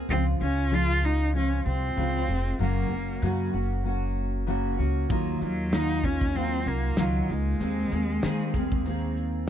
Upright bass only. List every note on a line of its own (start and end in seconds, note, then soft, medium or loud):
0.09 0.35 C#2 medium
0.41 1.62 C#2 medium
1.66 1.91 C2 medium
1.97 2.23 C#2 medium
2.28 2.54 F1 medium
2.59 2.85 F#1 medium
2.90 3.16 F#1 medium
3.22 3.48 F#2 loud
3.54 4.75 F#1 medium
4.79 5.04 C#2 medium
5.10 5.36 D#2 medium
5.41 6.63 D#2 medium
6.66 6.92 C2 medium
6.98 7.23 C#2 medium
7.29 7.55 C#2 medium
7.60 7.86 D#2 medium
7.92 8.17 D#2 medium
8.23 8.49 D#3 medium
8.54 9.49 D#2 medium